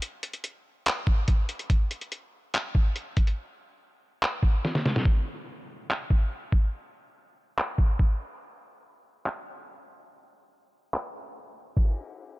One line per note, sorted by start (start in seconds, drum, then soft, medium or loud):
0.02 closed hi-hat medium
0.23 closed hi-hat medium
0.33 closed hi-hat soft
0.44 closed hi-hat medium
0.86 clap loud
0.86 closed hi-hat medium
1.07 kick medium
1.28 kick medium
1.28 closed hi-hat medium
1.49 closed hi-hat medium
1.59 closed hi-hat medium
1.70 kick loud
1.70 closed hi-hat medium
1.91 closed hi-hat medium
2.01 closed hi-hat soft
2.12 closed hi-hat medium
2.54 clap loud
2.54 closed hi-hat medium
2.75 kick medium
2.96 closed hi-hat medium
3.17 kick loud
3.17 closed hi-hat medium
3.27 closed hi-hat medium
4.23 clap loud
4.43 kick medium
4.65 snare medium
4.75 snare medium
4.86 snare medium
4.96 snare medium
5.05 kick loud
5.91 clap loud
6.10 kick medium
6.52 kick loud
7.58 clap loud
7.78 kick medium
7.99 kick medium
9.26 clap loud
10.94 clap loud
11.77 kick loud
11.77 crash medium